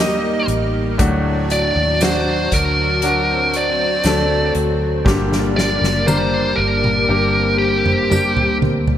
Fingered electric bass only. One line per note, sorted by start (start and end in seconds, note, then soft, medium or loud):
0.00 0.44 D#2 loud
0.48 0.95 A1 loud
0.99 1.71 D2 loud
1.76 2.48 D#2 loud
2.52 4.00 D2 loud
4.05 4.52 D2 loud
4.55 5.02 D2 loud
5.06 5.78 G1 loud
5.81 6.54 F#1 medium
6.58 7.05 G1 medium
7.09 8.58 G1 loud
8.62 8.98 D2 medium